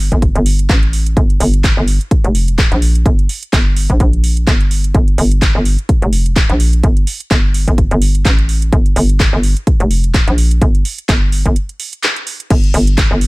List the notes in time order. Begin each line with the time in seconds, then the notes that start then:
0.12 G1, kick
0.22 kick, closed hi-hat
0.35 G1, closed hi-hat
0.46 open hi-hat
0.59 closed hi-hat
0.69 A1, kick, clap, closed hi-hat
0.83 closed hi-hat
0.93 open hi-hat
1.06 closed hi-hat
1.17 G1, kick, closed hi-hat
1.30 closed hi-hat
1.40 G1, open hi-hat
1.54 closed hi-hat
1.64 kick, clap, closed hi-hat
1.77 G1
1.88 open hi-hat
2.01 closed hi-hat
2.11 kick, closed hi-hat
2.24 F1, closed hi-hat
2.35 open hi-hat
2.48 closed hi-hat
2.58 kick, clap, closed hi-hat
2.72 A#1, closed hi-hat
2.82 open hi-hat
2.95 closed hi-hat
3.06 G1, kick, closed hi-hat
3.19 closed hi-hat
3.29 open hi-hat
3.43 closed hi-hat
3.53 G1, kick, clap, closed hi-hat
3.76 open hi-hat
3.90 A#1, kick, closed hi-hat
4.00 A#1, kick, closed hi-hat
4.13 closed hi-hat
4.24 open hi-hat
4.37 closed hi-hat
4.47 G1, kick, clap, closed hi-hat
4.61 closed hi-hat
4.71 open hi-hat
4.84 closed hi-hat
4.95 G1, kick, closed hi-hat
5.08 closed hi-hat
5.18 G1, open hi-hat
5.31 closed hi-hat
5.42 kick, clap, closed hi-hat
5.55 G1
5.65 open hi-hat
5.79 closed hi-hat
5.89 kick, closed hi-hat
6.02 F1, closed hi-hat
6.13 open hi-hat
6.26 closed hi-hat
6.36 kick, clap, closed hi-hat
6.50 A#1, closed hi-hat
6.60 open hi-hat
6.73 closed hi-hat
6.83 G1, kick, closed hi-hat
6.97 closed hi-hat
7.07 open hi-hat
7.20 closed hi-hat
7.31 G1, kick, clap, closed hi-hat
7.54 open hi-hat
7.68 G1, kick, closed hi-hat
7.78 kick, closed hi-hat
7.91 G1, closed hi-hat
8.02 open hi-hat
8.15 closed hi-hat
8.25 A1, kick, clap, closed hi-hat
8.39 closed hi-hat
8.49 open hi-hat
8.62 closed hi-hat
8.73 G1, kick, closed hi-hat
8.86 closed hi-hat
8.96 G1, open hi-hat
9.09 closed hi-hat
9.20 kick, clap, closed hi-hat
9.33 G1
9.43 open hi-hat
9.57 closed hi-hat
9.67 kick, closed hi-hat
9.80 F1, closed hi-hat
9.91 open hi-hat
10.04 closed hi-hat
10.14 kick, clap, closed hi-hat
10.28 A#1, closed hi-hat
10.38 open hi-hat
10.51 closed hi-hat
10.62 G1, kick, closed hi-hat
10.75 closed hi-hat
10.85 open hi-hat
10.98 closed hi-hat
11.09 G1, kick, clap, closed hi-hat
11.32 open hi-hat
11.46 G1, kick, closed hi-hat
11.56 closed hi-hat
11.69 closed hi-hat
11.80 open hi-hat
11.93 closed hi-hat
12.03 clap, closed hi-hat
12.16 closed hi-hat
12.27 open hi-hat
12.40 closed hi-hat
12.50 G1, kick, closed hi-hat, crash
12.64 closed hi-hat
12.74 G1, open hi-hat
12.87 closed hi-hat
12.98 kick, clap, closed hi-hat
13.11 G1
13.21 open hi-hat